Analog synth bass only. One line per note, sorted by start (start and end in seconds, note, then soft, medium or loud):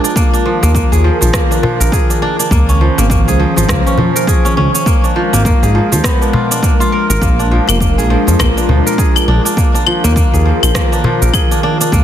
0.63 0.81 D#2 medium
0.92 1.10 D#2 medium
1.22 1.30 A#1 medium
1.80 1.88 A#1 medium
2.51 2.89 C#2 loud
2.98 3.29 G#1 medium
3.27 3.45 C#2 medium
3.57 3.65 G#1 medium
3.69 3.80 C#2 loud
3.98 4.10 F2 medium
4.57 4.69 C#2 medium
5.33 5.51 G#1 medium
5.63 5.81 G#1 loud
5.92 6.00 D#2 medium
7.10 7.18 G#1 medium
7.22 7.59 A#1 loud
7.68 7.99 F1 medium
7.98 8.16 A#1 medium
8.27 8.35 F2 medium
8.39 8.51 A#1 loud
8.69 8.80 D2 medium
9.28 9.39 A#1 medium
10.04 10.22 D#2 medium
10.33 10.51 D#2 loud
10.63 10.71 A#1 medium
11.22 11.30 A#1 medium
11.92 12.04 C#2 medium